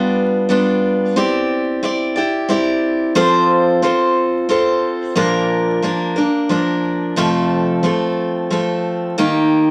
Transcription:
0.00 0.48 G3 medium
0.00 0.49 B3 medium
0.00 0.49 D4 medium
0.00 0.50 F4 medium
0.49 1.16 G3 medium
0.49 1.16 B3 medium
0.49 1.17 D4 medium
0.49 1.17 F4 medium
1.16 1.82 C4 medium
1.16 1.82 E4 medium
1.16 1.83 G4 medium
1.16 1.84 D5 medium
1.83 2.16 C4 medium
1.83 2.17 E4 medium
1.83 2.16 G4 medium
1.83 2.15 D5 medium
2.16 2.48 E4 soft
2.16 2.49 G4 medium
2.16 2.50 D5 medium
2.49 3.14 C4 medium
2.49 3.15 E4 medium
2.49 3.16 G4 medium
2.49 3.16 D5 medium
3.15 3.83 F3 medium
3.15 3.81 C4 medium
3.15 3.82 F4 medium
3.15 3.83 A4 medium
3.15 3.83 C5 loud
3.82 4.48 C4 medium
3.82 4.48 F4 medium
3.82 4.49 A4 medium
3.82 4.50 C5 medium
4.49 5.16 C4 medium
4.49 5.16 F4 medium
4.49 5.16 A4 medium
4.49 5.17 C5 medium
5.15 5.83 A#2 medium
5.15 5.82 F3 medium
5.15 5.82 A#3 medium
5.15 5.83 D4 medium
5.15 5.84 A#4 medium
5.83 6.16 F3 medium
5.83 6.17 A#3 medium
5.83 6.16 D4 medium
5.83 6.15 A#4 medium
6.16 6.49 A#3 soft
6.16 6.50 D4 medium
6.16 6.50 A#4 medium
6.49 7.16 F3 medium
6.49 7.17 A#3 medium
6.49 7.17 D4 medium
6.49 7.18 A#4 medium
7.16 7.84 F2 medium
7.16 7.84 C3 medium
7.16 7.82 F3 medium
7.16 7.83 A3 medium
7.16 7.83 C4 medium
7.16 7.84 A4 medium
7.83 8.49 F3 medium
7.83 8.50 A3 medium
7.83 8.51 C4 medium
7.83 8.51 A4 medium
8.50 9.17 F3 medium
8.50 9.18 A3 medium
8.50 9.18 C4 medium
8.50 9.18 A4 medium
9.18 9.71 D#3 medium
9.18 9.71 A#3 medium
9.18 9.71 D#4 medium
9.18 9.71 G4 medium

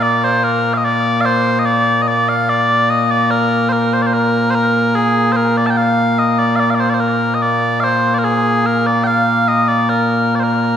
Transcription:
0.00 10.77 A#2 medium
0.00 10.77 A#3 medium
0.00 0.24 D5 loud
0.24 0.44 C5 medium
0.44 0.74 A#4 medium
0.74 0.85 D#5 medium
0.74 0.77 F5 medium
0.85 1.21 D5 loud
1.21 1.25 F5 loud
1.25 1.59 C5 loud
1.59 1.66 D#5 medium
1.66 2.02 D5 loud
2.02 2.08 D#5 medium
2.08 2.29 D5 medium
2.29 2.49 F5 medium
2.49 2.90 D5 loud
2.90 3.11 D#5 medium
3.11 3.31 D5 loud
3.31 3.69 A#4 loud
3.69 3.93 A#4 medium
3.69 3.73 C5 medium
3.93 4.02 C5 medium
4.02 4.06 D5 medium
4.06 4.14 C5 medium
4.14 4.51 A#4 medium
4.51 4.55 C5 medium
4.55 4.95 A#4 medium
4.95 5.32 G#4 medium
5.32 5.37 C5 medium
5.37 5.57 A#4 medium
5.57 5.66 D5 medium
5.66 5.77 G5 medium
5.66 5.70 A5 medium
5.77 6.19 F5 loud
6.19 6.39 D#5 medium
6.39 6.56 D5 medium
6.56 6.70 D5 medium
6.56 6.60 F5 medium
6.70 6.75 F5 medium
6.75 6.80 D5 medium
6.80 6.90 C5 medium
6.90 6.94 D5 medium
6.94 7.00 C5 medium
7.00 7.34 A#4 medium
7.34 7.42 D#5 medium
7.42 7.80 D5 medium
7.80 8.14 C5 medium
7.80 7.84 F5 medium
8.14 8.19 D5 medium
8.19 8.24 A#4 medium
8.24 8.66 G#4 medium
8.66 8.87 A#4 medium
8.87 9.04 D5 medium
9.04 9.48 F5 loud
9.04 9.07 G5 loud
9.48 9.68 D#5 medium
9.68 9.89 D5 medium
9.89 10.35 A#4 medium
10.35 10.40 D5 medium
10.40 10.77 A#4 medium
10.40 10.43 C5 medium

